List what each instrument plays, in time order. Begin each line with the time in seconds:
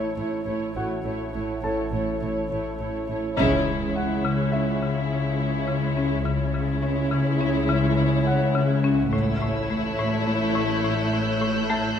Already playing: synth drone A1, viola section A3 E4, grand piano D#4 D#5, violin section C#5
0.16 double bass section A1, cello section A2, viola section A3 E4, violin section C#5
0.45 synth drone A1, double bass section A1, cello section A2, viola section A3 E4, violin section C#5
0.75 double bass section A1, cello section A2, viola section A3 E4, grand piano F#4 F#5, violin section C#5
1.04 double bass section A1, cello section A2, viola section A3 E4, violin section C#5
1.34 double bass section A1, cello section A2, viola section A3 E4, violin section C#5
1.63 double bass section A1, cello section A2, viola section A3 E4, grand piano A4 A5, violin section C#5
1.92 double bass section A1, cello section A2, viola section A3 E4, violin section C#5
2.20 double bass section A1, cello section A2, viola section A3 E4, violin section C#5
2.50 double bass section A1, cello section A2, viola section A3 E4, violin section C#5
2.79 double bass section A1, cello section A2, viola section A3 E4, violin section C#5
3.08 double bass section A1, cello section A2, viola section A3 E4, violin section C#5
3.37 synth drone C#2, double bass section C#2, marimba C#3, cello section C#3, viola section G#3, violin section E4 C#5, impact
3.66 marimba C#3
3.96 marimba C#4, grand piano F#5
4.24 marimba C#3
4.52 marimba C#4, grand piano E5
4.82 marimba C#3
5.11 marimba C#3
5.40 marimba C#3
5.68 marimba C#3
5.97 marimba C#4
6.25 synth drone C#2, double bass section C#2, marimba C#3, cello section C#3, viola section G#3, violin section E4 C#5
6.54 marimba C#3
6.83 marimba C#4
7.11 marimba C#3
7.41 marimba C#4
7.69 marimba C#3
7.97 marimba C#3
8.26 marimba C#3, grand piano F#5
8.55 marimba C#3
8.84 marimba C#4
9.12 synth drone A1, double bass section A1, cello section A2, marimba A2, viola section A3, violin section E4 C#5 E6
9.42 marimba A2
9.70 marimba A3, violin section F#6
9.99 marimba A2
10.27 marimba A3, violin section G6
10.56 marimba A2
10.84 marimba A2
11.13 marimba A2
11.41 marimba A2
11.70 marimba A3, grand piano A5